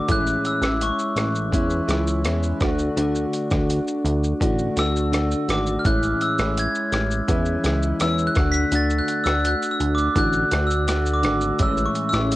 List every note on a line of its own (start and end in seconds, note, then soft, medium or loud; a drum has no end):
0.00 0.11 D6 medium
0.08 0.37 A1 medium
0.08 0.63 A2 medium
0.08 0.63 E3 medium
0.08 0.63 G#3 medium
0.08 0.62 C#4 medium
0.08 0.61 E4 medium
0.08 0.47 F#6 loud
0.08 kick loud
0.08 closed hi-hat medium
0.08 shaker medium
0.27 shaker medium
0.45 0.83 E6 medium
0.45 closed hi-hat soft
0.45 shaker soft
0.62 0.91 A1 loud
0.62 1.52 G#3 soft
0.62 1.52 C#4 medium
0.62 1.52 E4 medium
0.62 cross-stick medium
0.62 shaker medium
0.81 1.86 C#6 medium
0.81 closed hi-hat medium
0.81 shaker medium
0.99 shaker medium
1.16 1.54 A1 medium
1.16 cross-stick loud
1.16 closed hi-hat soft
1.16 shaker soft
1.35 shaker soft
1.52 1.81 E2 loud
1.52 1.87 E3 medium
1.52 1.88 G#3 medium
1.52 1.88 C#4 medium
1.52 1.89 E4 medium
1.52 kick medium
1.52 closed hi-hat medium
1.52 shaker medium
1.70 shaker soft
1.88 2.25 C#2 medium
1.88 2.23 E3 medium
1.88 2.24 G#3 medium
1.88 2.25 C#4 medium
1.88 2.26 E4 medium
1.88 cross-stick medium
1.88 closed hi-hat medium
1.88 shaker medium
2.07 shaker medium
2.24 2.53 E2 medium
2.24 2.61 E3 medium
2.24 2.61 G#3 medium
2.24 2.62 C#4 medium
2.24 2.62 E4 medium
2.24 cross-stick medium
2.24 closed hi-hat medium
2.24 shaker medium
2.43 shaker soft
2.61 2.90 D2 medium
2.61 2.95 D3 medium
2.61 2.96 A3 medium
2.61 2.97 D4 medium
2.61 2.97 F#4 medium
2.61 kick loud
2.61 cross-stick medium
2.61 closed hi-hat soft
2.61 shaker soft
2.79 shaker soft
2.97 3.26 D2 medium
2.97 3.51 D3 medium
2.97 3.51 A3 medium
2.97 3.51 D4 loud
2.97 3.50 F#4 medium
2.97 closed hi-hat medium
2.97 shaker medium
3.15 shaker medium
3.33 closed hi-hat soft
3.33 shaker soft
3.51 3.80 D2 loud
3.51 4.41 A3 soft
3.51 4.41 D4 medium
3.51 4.41 F#4 medium
3.51 kick loud
3.51 cross-stick medium
3.51 shaker medium
3.70 closed hi-hat medium
3.70 shaker medium
3.88 shaker medium
4.05 4.34 D2 loud
4.05 closed hi-hat soft
4.05 shaker soft
4.24 shaker soft
4.40 4.70 A1 medium
4.40 4.75 D3 medium
4.40 4.76 A3 medium
4.40 4.77 D4 medium
4.40 4.77 F#4 medium
4.40 kick medium
4.40 closed hi-hat medium
4.40 shaker medium
4.59 shaker soft
4.76 5.34 D2 medium
4.76 5.11 D3 medium
4.76 5.12 A3 medium
4.76 5.13 D4 medium
4.76 5.13 F#4 medium
4.76 5.52 E6 medium
4.76 cross-stick medium
4.76 closed hi-hat medium
4.76 shaker medium
4.96 shaker soft
5.12 5.47 D3 medium
5.12 5.48 A3 medium
5.12 5.49 D4 medium
5.12 5.50 F#4 medium
5.12 cross-stick loud
5.12 closed hi-hat medium
5.12 shaker medium
5.31 shaker soft
5.49 5.78 G#1 medium
5.49 5.85 D3 soft
5.49 5.85 A3 medium
5.49 5.86 D4 medium
5.49 5.86 F#4 medium
5.49 5.80 D6 medium
5.49 cross-stick medium
5.49 closed hi-hat soft
5.49 shaker soft
5.67 shaker soft
5.79 5.86 F6 medium
5.85 6.14 A1 loud
5.85 6.39 A2 medium
5.85 6.39 E3 medium
5.85 6.39 G#3 medium
5.85 6.39 C#4 medium
5.85 6.38 E4 medium
5.85 6.23 F#6 medium
5.85 kick loud
5.85 closed hi-hat medium
5.85 shaker medium
6.03 shaker medium
6.21 6.38 E6 medium
6.21 closed hi-hat soft
6.21 shaker soft
6.38 6.68 A1 loud
6.38 7.28 G#3 soft
6.38 7.28 C#4 medium
6.38 7.29 E4 medium
6.38 cross-stick medium
6.38 shaker medium
6.57 7.62 G#6 medium
6.57 closed hi-hat medium
6.57 shaker medium
6.75 shaker medium
6.92 7.21 A1 loud
6.92 cross-stick loud
6.92 closed hi-hat soft
6.92 shaker soft
7.11 shaker soft
7.28 7.57 E2 loud
7.28 7.63 E3 medium
7.28 7.64 G#3 medium
7.28 7.65 C#4 medium
7.28 7.66 E4 medium
7.28 kick medium
7.28 closed hi-hat medium
7.28 shaker medium
7.46 shaker soft
7.64 7.93 C#2 loud
7.64 7.99 E3 medium
7.64 8.00 G#3 medium
7.64 8.01 C#4 medium
7.64 8.02 E4 medium
7.64 cross-stick medium
7.64 closed hi-hat medium
7.64 shaker medium
7.83 shaker medium
8.00 8.29 E2 loud
8.00 8.36 E3 medium
8.00 8.37 G#3 medium
8.00 8.37 C#4 medium
8.00 8.38 E4 medium
8.00 8.23 E6 loud
8.00 cross-stick medium
8.00 closed hi-hat medium
8.00 shaker medium
8.18 shaker soft
8.27 8.50 F#6 medium
8.35 8.65 D2 medium
8.35 8.71 D3 medium
8.35 8.72 A3 medium
8.35 8.72 D4 medium
8.35 8.73 F#4 medium
8.35 kick loud
8.35 cross-stick medium
8.35 closed hi-hat soft
8.35 shaker soft
8.52 8.75 B6 loud
8.52 shaker soft
8.72 9.01 D2 loud
8.72 9.26 D3 medium
8.72 9.27 A3 medium
8.72 9.26 D4 medium
8.72 9.25 F#4 medium
8.72 8.99 A6 loud
8.72 closed hi-hat medium
8.72 shaker medium
8.90 shaker medium
8.98 9.22 F#6 medium
9.08 closed hi-hat soft
9.08 shaker soft
9.24 9.55 D2 loud
9.24 10.16 D4 medium
9.24 10.16 F#4 medium
9.24 9.44 E6 medium
9.24 cross-stick medium
9.24 shaker medium
9.28 10.16 A3 soft
9.45 9.70 F#6 medium
9.45 closed hi-hat medium
9.45 shaker medium
9.62 shaker medium
9.71 9.92 E6 medium
9.80 10.09 D2 medium
9.80 closed hi-hat medium
9.80 shaker soft
9.95 10.05 D6 medium
9.95 shaker soft
10.15 10.45 A1 loud
10.15 10.50 D3 medium
10.15 10.52 A3 medium
10.15 10.52 D4 medium
10.15 10.53 F#4 medium
10.15 10.66 F#6 loud
10.15 kick medium
10.15 closed hi-hat medium
10.15 shaker medium
10.33 shaker medium
10.51 11.25 D2 medium
10.51 10.86 D3 medium
10.51 10.87 A3 medium
10.51 10.88 D4 medium
10.51 10.88 F#4 medium
10.51 cross-stick medium
10.51 closed hi-hat medium
10.51 shaker medium
10.67 11.15 E6 medium
10.67 shaker medium
10.87 11.22 D3 medium
10.87 11.23 A3 medium
10.87 11.24 D4 medium
10.87 11.24 F#4 medium
10.87 cross-stick loud
10.87 closed hi-hat medium
10.87 shaker medium
11.06 shaker soft
11.14 11.57 D6 medium
11.23 11.52 G#1 medium
11.23 11.59 D3 medium
11.23 11.60 A3 medium
11.23 11.60 D4 medium
11.23 11.61 F#4 medium
11.23 cross-stick medium
11.23 closed hi-hat soft
11.23 shaker soft
11.41 shaker soft
11.59 11.88 A1 loud
11.59 12.13 A2 medium
11.59 12.14 E3 medium
11.59 12.14 G#3 medium
11.59 12.13 C#4 medium
11.59 12.12 E4 medium
11.59 11.73 E6 medium
11.59 kick loud
11.59 closed hi-hat medium
11.59 shaker medium
11.77 shaker medium
11.86 12.09 C#6 medium
11.95 closed hi-hat soft
11.95 shaker soft
12.09 12.36 A1 loud
12.09 12.36 E6 loud
12.09 shaker medium
12.13 12.36 G#3 soft
12.13 12.36 C#4 soft
12.13 12.36 E4 medium
12.13 cross-stick medium
12.32 closed hi-hat medium
12.32 shaker medium